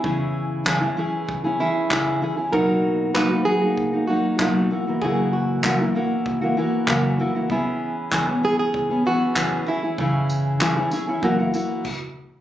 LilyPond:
<<
  \new Staff \with { instrumentName = "Nylon-string guitar" } { \time 4/4 \key cis \dorian \tempo 4 = 96 e'4. r4 e'4. | ais'4 b'8 gis'4 fis'8 fis'4 | gis'8 fis'4. r2 | e'4. gis'16 gis'8. fis'4 e'8~ |
e'2.~ e'8 r8 | }
  \new Staff \with { instrumentName = "Steel-string acoustic guitar" } { \time 4/4 \key cis \dorian <cis e cis' e' gis'>4 <cis e cis' e' gis'>16 <cis' e' gis'>16 <e cis' e' gis'>8. <cis' e' gis'>16 <e cis' e' gis'>8 <cis e cis' e' gis'>8 <e cis' e' gis'>16 <cis' e' gis'>16 | <b, fis ais dis' fis'>4 <b, fis ais dis' fis'>16 <ais dis' fis'>16 <fis ais dis' fis'>16 <ais dis' fis'>8 <ais dis' fis'>16 <fis ais dis' fis'>8 <b, fis ais dis' fis'>8 <e ais e' fis'>16 <e ais e' fis'>16 | <fis, cis e ais e' fis'>4 <fis, cis e ais e' fis'>16 <e ais e' fis'>16 <e ais e' fis'>8. <e ais e' fis'>16 <e ais e' fis'>8 <fis, cis e ais e' fis'>8 <e ais e' fis'>16 <e ais e' fis'>16 | <e b cis' gis'>4 <e b cis' gis'>16 <b cis' gis'>16 <e b cis' gis'>8. <b cis' gis'>16 <e b cis' gis'>8 <e b cis' gis'>8 <e cis' e' gis'>16 <cis' e' gis'>16 |
<cis e cis' e' gis'>4 <cis e cis' e' gis'>16 <cis' e' gis'>16 <e cis' e' gis'>16 <cis' e' gis'>16 <fis, cis e ais e' fis'>16 <e ais e' fis'>16 <e ais e' fis'>8 r4 | }
  \new DrumStaff \with { instrumentName = "Drums" } \drummode { \time 4/4 bd4 <hc bd>4 bd4 <hc bd>4 | bd4 <hc bd>4 bd4 <hc bd>4 | bd4 <hc bd>4 bd4 <hc bd>4 | bd4 <hc bd>4 bd4 <hc bd>4 |
bd8 tamb8 <hc bd>8 tamb8 bd8 tamb8 <cymc bd>4 | }
>>